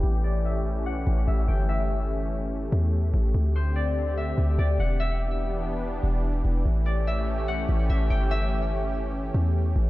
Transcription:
Already playing: E3 G4 E5
0.03 A1 A3 C#4
0.24 D5
0.45 E5
0.86 B1 F#5
1.07 A1
1.27 A1 E5
1.48 G1 G5
1.69 E5
2.72 E2
3.14 A1
3.34 D2 D3 C4 G4
3.56 C5
3.76 D5
4.17 E5
4.38 D2
4.59 D2 D5
4.79 E1 F#5
5.00 E3 B3 D4 E5
6.03 E1
6.45 E1
6.65 A1 A3 C#4 G4
6.86 D5
7.07 E5
7.48 B1 F#5
7.69 A1
7.90 A1 E5
8.10 G1 G5
8.31 E5
9.34 E2
9.76 A1

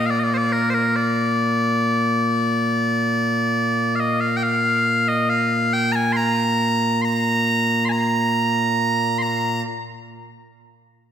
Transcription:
Already playing: A#2 A#3
0.06 F5
0.10 D5
0.19 D5 D#5
0.34 C5 D5
0.52 A#4
0.70 C5
0.74 A#4
0.96 D5
3.95 F5
4.00 D#5
4.20 F5
4.37 G5
4.43 F5
5.08 D#5
5.29 F5
5.73 G5
5.92 G#5 A#5
6.13 A#5 C6
7.02 A#5 C6
7.85 C6
7.90 A#5
9.18 A#5 C6

